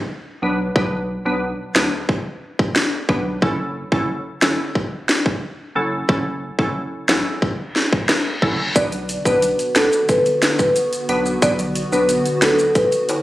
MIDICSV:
0, 0, Header, 1, 7, 480
1, 0, Start_track
1, 0, Key_signature, 2, "minor"
1, 0, Tempo, 666667
1, 545, Time_signature, 4, 2, 24, 8
1, 9521, End_track
2, 0, Start_track
2, 0, Title_t, "Marimba"
2, 0, Program_c, 0, 12
2, 6304, Note_on_c, 0, 74, 110
2, 6384, Note_off_c, 0, 74, 0
2, 6664, Note_on_c, 0, 71, 80
2, 6743, Note_off_c, 0, 71, 0
2, 7025, Note_on_c, 0, 69, 83
2, 7104, Note_off_c, 0, 69, 0
2, 7264, Note_on_c, 0, 71, 78
2, 7343, Note_off_c, 0, 71, 0
2, 7625, Note_on_c, 0, 71, 72
2, 7704, Note_off_c, 0, 71, 0
2, 8225, Note_on_c, 0, 74, 110
2, 8304, Note_off_c, 0, 74, 0
2, 8586, Note_on_c, 0, 71, 77
2, 8665, Note_off_c, 0, 71, 0
2, 8946, Note_on_c, 0, 69, 81
2, 9025, Note_off_c, 0, 69, 0
2, 9185, Note_on_c, 0, 71, 83
2, 9264, Note_off_c, 0, 71, 0
2, 9521, End_track
3, 0, Start_track
3, 0, Title_t, "Synth pluck"
3, 0, Program_c, 1, 84
3, 304, Note_on_c, 1, 54, 80
3, 306, Note_on_c, 1, 59, 68
3, 307, Note_on_c, 1, 62, 72
3, 309, Note_on_c, 1, 71, 85
3, 395, Note_off_c, 1, 54, 0
3, 395, Note_off_c, 1, 59, 0
3, 396, Note_off_c, 1, 62, 0
3, 397, Note_off_c, 1, 71, 0
3, 544, Note_on_c, 1, 54, 92
3, 545, Note_on_c, 1, 59, 81
3, 548, Note_on_c, 1, 62, 83
3, 549, Note_on_c, 1, 71, 101
3, 635, Note_off_c, 1, 54, 0
3, 635, Note_off_c, 1, 59, 0
3, 636, Note_off_c, 1, 62, 0
3, 637, Note_off_c, 1, 71, 0
3, 903, Note_on_c, 1, 54, 79
3, 905, Note_on_c, 1, 59, 68
3, 906, Note_on_c, 1, 62, 71
3, 908, Note_on_c, 1, 71, 86
3, 994, Note_off_c, 1, 54, 0
3, 995, Note_off_c, 1, 59, 0
3, 995, Note_off_c, 1, 62, 0
3, 997, Note_off_c, 1, 71, 0
3, 1262, Note_on_c, 1, 54, 74
3, 1263, Note_on_c, 1, 59, 69
3, 1265, Note_on_c, 1, 62, 71
3, 1266, Note_on_c, 1, 71, 86
3, 1353, Note_off_c, 1, 54, 0
3, 1354, Note_off_c, 1, 59, 0
3, 1355, Note_off_c, 1, 62, 0
3, 1355, Note_off_c, 1, 71, 0
3, 2223, Note_on_c, 1, 54, 79
3, 2224, Note_on_c, 1, 59, 69
3, 2226, Note_on_c, 1, 62, 68
3, 2228, Note_on_c, 1, 71, 85
3, 2314, Note_off_c, 1, 54, 0
3, 2315, Note_off_c, 1, 59, 0
3, 2316, Note_off_c, 1, 62, 0
3, 2316, Note_off_c, 1, 71, 0
3, 2463, Note_on_c, 1, 54, 89
3, 2464, Note_on_c, 1, 61, 85
3, 2466, Note_on_c, 1, 64, 87
3, 2468, Note_on_c, 1, 69, 104
3, 2554, Note_off_c, 1, 54, 0
3, 2554, Note_off_c, 1, 61, 0
3, 2555, Note_off_c, 1, 64, 0
3, 2556, Note_off_c, 1, 69, 0
3, 2824, Note_on_c, 1, 54, 78
3, 2825, Note_on_c, 1, 61, 70
3, 2827, Note_on_c, 1, 64, 71
3, 2828, Note_on_c, 1, 69, 88
3, 2914, Note_off_c, 1, 54, 0
3, 2915, Note_off_c, 1, 61, 0
3, 2916, Note_off_c, 1, 64, 0
3, 2917, Note_off_c, 1, 69, 0
3, 3183, Note_on_c, 1, 54, 76
3, 3185, Note_on_c, 1, 61, 68
3, 3186, Note_on_c, 1, 64, 67
3, 3188, Note_on_c, 1, 69, 88
3, 3274, Note_off_c, 1, 54, 0
3, 3275, Note_off_c, 1, 61, 0
3, 3276, Note_off_c, 1, 64, 0
3, 3277, Note_off_c, 1, 69, 0
3, 4143, Note_on_c, 1, 54, 75
3, 4145, Note_on_c, 1, 61, 70
3, 4146, Note_on_c, 1, 64, 69
3, 4147, Note_on_c, 1, 69, 87
3, 4234, Note_off_c, 1, 54, 0
3, 4235, Note_off_c, 1, 61, 0
3, 4236, Note_off_c, 1, 64, 0
3, 4236, Note_off_c, 1, 69, 0
3, 4383, Note_on_c, 1, 54, 89
3, 4385, Note_on_c, 1, 61, 88
3, 4387, Note_on_c, 1, 64, 84
3, 4387, Note_on_c, 1, 69, 102
3, 4474, Note_off_c, 1, 54, 0
3, 4475, Note_off_c, 1, 61, 0
3, 4476, Note_off_c, 1, 64, 0
3, 4476, Note_off_c, 1, 69, 0
3, 4743, Note_on_c, 1, 54, 76
3, 4745, Note_on_c, 1, 61, 71
3, 4747, Note_on_c, 1, 64, 68
3, 4748, Note_on_c, 1, 69, 87
3, 4834, Note_off_c, 1, 54, 0
3, 4835, Note_off_c, 1, 61, 0
3, 4836, Note_off_c, 1, 64, 0
3, 4836, Note_off_c, 1, 69, 0
3, 5102, Note_on_c, 1, 54, 76
3, 5103, Note_on_c, 1, 61, 73
3, 5106, Note_on_c, 1, 64, 68
3, 5107, Note_on_c, 1, 69, 82
3, 5194, Note_off_c, 1, 54, 0
3, 5194, Note_off_c, 1, 61, 0
3, 5195, Note_off_c, 1, 64, 0
3, 5196, Note_off_c, 1, 69, 0
3, 6062, Note_on_c, 1, 54, 79
3, 6063, Note_on_c, 1, 61, 72
3, 6065, Note_on_c, 1, 64, 66
3, 6066, Note_on_c, 1, 69, 86
3, 6154, Note_off_c, 1, 54, 0
3, 6154, Note_off_c, 1, 61, 0
3, 6155, Note_off_c, 1, 64, 0
3, 6155, Note_off_c, 1, 69, 0
3, 6304, Note_on_c, 1, 54, 91
3, 6304, Note_on_c, 1, 59, 91
3, 6306, Note_on_c, 1, 62, 84
3, 6307, Note_on_c, 1, 71, 101
3, 6394, Note_off_c, 1, 54, 0
3, 6395, Note_off_c, 1, 59, 0
3, 6395, Note_off_c, 1, 62, 0
3, 6396, Note_off_c, 1, 71, 0
3, 6663, Note_on_c, 1, 54, 79
3, 6664, Note_on_c, 1, 59, 76
3, 6666, Note_on_c, 1, 62, 73
3, 6667, Note_on_c, 1, 71, 90
3, 6754, Note_off_c, 1, 54, 0
3, 6755, Note_off_c, 1, 59, 0
3, 6755, Note_off_c, 1, 62, 0
3, 6756, Note_off_c, 1, 71, 0
3, 7024, Note_on_c, 1, 54, 76
3, 7025, Note_on_c, 1, 59, 70
3, 7027, Note_on_c, 1, 62, 71
3, 7028, Note_on_c, 1, 71, 86
3, 7115, Note_off_c, 1, 54, 0
3, 7115, Note_off_c, 1, 59, 0
3, 7116, Note_off_c, 1, 62, 0
3, 7117, Note_off_c, 1, 71, 0
3, 7984, Note_on_c, 1, 54, 79
3, 7985, Note_on_c, 1, 59, 70
3, 7986, Note_on_c, 1, 62, 72
3, 7987, Note_on_c, 1, 71, 90
3, 8075, Note_off_c, 1, 54, 0
3, 8075, Note_off_c, 1, 59, 0
3, 8076, Note_off_c, 1, 62, 0
3, 8076, Note_off_c, 1, 71, 0
3, 8224, Note_on_c, 1, 54, 95
3, 8225, Note_on_c, 1, 59, 90
3, 8227, Note_on_c, 1, 62, 88
3, 8228, Note_on_c, 1, 71, 103
3, 8314, Note_off_c, 1, 54, 0
3, 8315, Note_off_c, 1, 59, 0
3, 8316, Note_off_c, 1, 62, 0
3, 8317, Note_off_c, 1, 71, 0
3, 8584, Note_on_c, 1, 54, 80
3, 8585, Note_on_c, 1, 59, 75
3, 8586, Note_on_c, 1, 62, 73
3, 8588, Note_on_c, 1, 71, 85
3, 8674, Note_off_c, 1, 54, 0
3, 8675, Note_off_c, 1, 59, 0
3, 8675, Note_off_c, 1, 62, 0
3, 8677, Note_off_c, 1, 71, 0
3, 8944, Note_on_c, 1, 54, 77
3, 8946, Note_on_c, 1, 59, 72
3, 8947, Note_on_c, 1, 62, 71
3, 8949, Note_on_c, 1, 71, 84
3, 9034, Note_off_c, 1, 54, 0
3, 9035, Note_off_c, 1, 59, 0
3, 9036, Note_off_c, 1, 62, 0
3, 9037, Note_off_c, 1, 71, 0
3, 9521, End_track
4, 0, Start_track
4, 0, Title_t, "Analog synth pad"
4, 0, Program_c, 2, 89
4, 6307, Note_on_c, 2, 50, 87
4, 6307, Note_on_c, 2, 59, 76
4, 6309, Note_on_c, 2, 66, 99
4, 9521, Note_off_c, 2, 50, 0
4, 9521, Note_off_c, 2, 59, 0
4, 9521, Note_off_c, 2, 66, 0
4, 9521, End_track
5, 0, Start_track
5, 0, Title_t, "Sub bass"
5, 0, Program_c, 3, 38
5, 305, Note_on_c, 3, 35, 87
5, 509, Note_off_c, 3, 35, 0
5, 546, Note_on_c, 3, 35, 107
5, 851, Note_off_c, 3, 35, 0
5, 905, Note_on_c, 3, 35, 87
5, 1109, Note_off_c, 3, 35, 0
5, 1265, Note_on_c, 3, 38, 107
5, 1367, Note_off_c, 3, 38, 0
5, 2223, Note_on_c, 3, 35, 94
5, 2428, Note_off_c, 3, 35, 0
5, 2464, Note_on_c, 3, 30, 107
5, 2770, Note_off_c, 3, 30, 0
5, 2822, Note_on_c, 3, 30, 86
5, 3027, Note_off_c, 3, 30, 0
5, 3185, Note_on_c, 3, 31, 102
5, 3287, Note_off_c, 3, 31, 0
5, 4144, Note_on_c, 3, 30, 92
5, 4348, Note_off_c, 3, 30, 0
5, 4384, Note_on_c, 3, 30, 105
5, 4690, Note_off_c, 3, 30, 0
5, 4743, Note_on_c, 3, 30, 88
5, 4948, Note_off_c, 3, 30, 0
5, 5105, Note_on_c, 3, 33, 103
5, 5207, Note_off_c, 3, 33, 0
5, 6064, Note_on_c, 3, 30, 89
5, 6268, Note_off_c, 3, 30, 0
5, 6305, Note_on_c, 3, 35, 113
5, 6611, Note_off_c, 3, 35, 0
5, 6663, Note_on_c, 3, 35, 91
5, 6868, Note_off_c, 3, 35, 0
5, 7025, Note_on_c, 3, 37, 102
5, 7127, Note_off_c, 3, 37, 0
5, 7983, Note_on_c, 3, 35, 88
5, 8188, Note_off_c, 3, 35, 0
5, 8224, Note_on_c, 3, 35, 110
5, 8530, Note_off_c, 3, 35, 0
5, 8585, Note_on_c, 3, 35, 89
5, 8789, Note_off_c, 3, 35, 0
5, 8944, Note_on_c, 3, 38, 103
5, 9046, Note_off_c, 3, 38, 0
5, 9521, End_track
6, 0, Start_track
6, 0, Title_t, "Reverse cymbal"
6, 0, Program_c, 4, 119
6, 5345, Note_on_c, 4, 60, 84
6, 6305, Note_off_c, 4, 60, 0
6, 9521, End_track
7, 0, Start_track
7, 0, Title_t, "Drums"
7, 545, Note_on_c, 9, 36, 117
7, 617, Note_off_c, 9, 36, 0
7, 1265, Note_on_c, 9, 38, 115
7, 1337, Note_off_c, 9, 38, 0
7, 1504, Note_on_c, 9, 36, 93
7, 1576, Note_off_c, 9, 36, 0
7, 1867, Note_on_c, 9, 36, 93
7, 1939, Note_off_c, 9, 36, 0
7, 1985, Note_on_c, 9, 38, 119
7, 2057, Note_off_c, 9, 38, 0
7, 2223, Note_on_c, 9, 36, 97
7, 2295, Note_off_c, 9, 36, 0
7, 2464, Note_on_c, 9, 36, 111
7, 2536, Note_off_c, 9, 36, 0
7, 2822, Note_on_c, 9, 36, 91
7, 2894, Note_off_c, 9, 36, 0
7, 3184, Note_on_c, 9, 38, 122
7, 3256, Note_off_c, 9, 38, 0
7, 3423, Note_on_c, 9, 36, 93
7, 3495, Note_off_c, 9, 36, 0
7, 3665, Note_on_c, 9, 38, 107
7, 3737, Note_off_c, 9, 38, 0
7, 3786, Note_on_c, 9, 36, 87
7, 3858, Note_off_c, 9, 36, 0
7, 4384, Note_on_c, 9, 36, 115
7, 4456, Note_off_c, 9, 36, 0
7, 4742, Note_on_c, 9, 36, 91
7, 4814, Note_off_c, 9, 36, 0
7, 5105, Note_on_c, 9, 38, 118
7, 5177, Note_off_c, 9, 38, 0
7, 5343, Note_on_c, 9, 36, 95
7, 5415, Note_off_c, 9, 36, 0
7, 5586, Note_on_c, 9, 38, 65
7, 5658, Note_off_c, 9, 38, 0
7, 5707, Note_on_c, 9, 36, 94
7, 5779, Note_off_c, 9, 36, 0
7, 5824, Note_on_c, 9, 37, 98
7, 5824, Note_on_c, 9, 38, 122
7, 5896, Note_off_c, 9, 37, 0
7, 5896, Note_off_c, 9, 38, 0
7, 6064, Note_on_c, 9, 36, 93
7, 6136, Note_off_c, 9, 36, 0
7, 6304, Note_on_c, 9, 82, 79
7, 6305, Note_on_c, 9, 36, 119
7, 6306, Note_on_c, 9, 42, 71
7, 6376, Note_off_c, 9, 82, 0
7, 6377, Note_off_c, 9, 36, 0
7, 6378, Note_off_c, 9, 42, 0
7, 6424, Note_on_c, 9, 82, 56
7, 6425, Note_on_c, 9, 42, 58
7, 6496, Note_off_c, 9, 82, 0
7, 6497, Note_off_c, 9, 42, 0
7, 6545, Note_on_c, 9, 42, 84
7, 6546, Note_on_c, 9, 82, 56
7, 6617, Note_off_c, 9, 42, 0
7, 6618, Note_off_c, 9, 82, 0
7, 6663, Note_on_c, 9, 36, 90
7, 6666, Note_on_c, 9, 82, 79
7, 6735, Note_off_c, 9, 36, 0
7, 6738, Note_off_c, 9, 82, 0
7, 6785, Note_on_c, 9, 42, 67
7, 6787, Note_on_c, 9, 82, 75
7, 6857, Note_off_c, 9, 42, 0
7, 6859, Note_off_c, 9, 82, 0
7, 6906, Note_on_c, 9, 42, 52
7, 6907, Note_on_c, 9, 82, 54
7, 6978, Note_off_c, 9, 42, 0
7, 6979, Note_off_c, 9, 82, 0
7, 7021, Note_on_c, 9, 82, 55
7, 7025, Note_on_c, 9, 38, 127
7, 7025, Note_on_c, 9, 42, 77
7, 7093, Note_off_c, 9, 82, 0
7, 7097, Note_off_c, 9, 38, 0
7, 7097, Note_off_c, 9, 42, 0
7, 7145, Note_on_c, 9, 82, 74
7, 7217, Note_off_c, 9, 82, 0
7, 7263, Note_on_c, 9, 42, 80
7, 7263, Note_on_c, 9, 82, 65
7, 7264, Note_on_c, 9, 36, 98
7, 7335, Note_off_c, 9, 42, 0
7, 7335, Note_off_c, 9, 82, 0
7, 7336, Note_off_c, 9, 36, 0
7, 7385, Note_on_c, 9, 82, 51
7, 7387, Note_on_c, 9, 42, 50
7, 7457, Note_off_c, 9, 82, 0
7, 7459, Note_off_c, 9, 42, 0
7, 7504, Note_on_c, 9, 42, 85
7, 7506, Note_on_c, 9, 38, 116
7, 7509, Note_on_c, 9, 82, 52
7, 7576, Note_off_c, 9, 42, 0
7, 7578, Note_off_c, 9, 38, 0
7, 7581, Note_off_c, 9, 82, 0
7, 7625, Note_on_c, 9, 82, 80
7, 7627, Note_on_c, 9, 36, 94
7, 7697, Note_off_c, 9, 82, 0
7, 7699, Note_off_c, 9, 36, 0
7, 7745, Note_on_c, 9, 82, 79
7, 7746, Note_on_c, 9, 42, 87
7, 7817, Note_off_c, 9, 82, 0
7, 7818, Note_off_c, 9, 42, 0
7, 7867, Note_on_c, 9, 42, 55
7, 7869, Note_on_c, 9, 82, 55
7, 7939, Note_off_c, 9, 42, 0
7, 7941, Note_off_c, 9, 82, 0
7, 7984, Note_on_c, 9, 42, 72
7, 8056, Note_off_c, 9, 42, 0
7, 8106, Note_on_c, 9, 82, 70
7, 8178, Note_off_c, 9, 82, 0
7, 8224, Note_on_c, 9, 36, 122
7, 8225, Note_on_c, 9, 42, 71
7, 8225, Note_on_c, 9, 82, 77
7, 8296, Note_off_c, 9, 36, 0
7, 8297, Note_off_c, 9, 42, 0
7, 8297, Note_off_c, 9, 82, 0
7, 8345, Note_on_c, 9, 42, 61
7, 8345, Note_on_c, 9, 82, 57
7, 8417, Note_off_c, 9, 42, 0
7, 8417, Note_off_c, 9, 82, 0
7, 8464, Note_on_c, 9, 42, 83
7, 8466, Note_on_c, 9, 82, 58
7, 8536, Note_off_c, 9, 42, 0
7, 8538, Note_off_c, 9, 82, 0
7, 8586, Note_on_c, 9, 82, 73
7, 8658, Note_off_c, 9, 82, 0
7, 8703, Note_on_c, 9, 42, 71
7, 8707, Note_on_c, 9, 82, 74
7, 8775, Note_off_c, 9, 42, 0
7, 8779, Note_off_c, 9, 82, 0
7, 8824, Note_on_c, 9, 42, 54
7, 8828, Note_on_c, 9, 82, 55
7, 8896, Note_off_c, 9, 42, 0
7, 8900, Note_off_c, 9, 82, 0
7, 8941, Note_on_c, 9, 82, 52
7, 8942, Note_on_c, 9, 38, 127
7, 8942, Note_on_c, 9, 42, 80
7, 9013, Note_off_c, 9, 82, 0
7, 9014, Note_off_c, 9, 38, 0
7, 9014, Note_off_c, 9, 42, 0
7, 9064, Note_on_c, 9, 82, 73
7, 9136, Note_off_c, 9, 82, 0
7, 9182, Note_on_c, 9, 42, 79
7, 9182, Note_on_c, 9, 82, 67
7, 9183, Note_on_c, 9, 36, 97
7, 9254, Note_off_c, 9, 42, 0
7, 9254, Note_off_c, 9, 82, 0
7, 9255, Note_off_c, 9, 36, 0
7, 9303, Note_on_c, 9, 82, 50
7, 9304, Note_on_c, 9, 42, 52
7, 9375, Note_off_c, 9, 82, 0
7, 9376, Note_off_c, 9, 42, 0
7, 9422, Note_on_c, 9, 42, 85
7, 9427, Note_on_c, 9, 65, 72
7, 9427, Note_on_c, 9, 82, 51
7, 9494, Note_off_c, 9, 42, 0
7, 9499, Note_off_c, 9, 65, 0
7, 9499, Note_off_c, 9, 82, 0
7, 9521, End_track
0, 0, End_of_file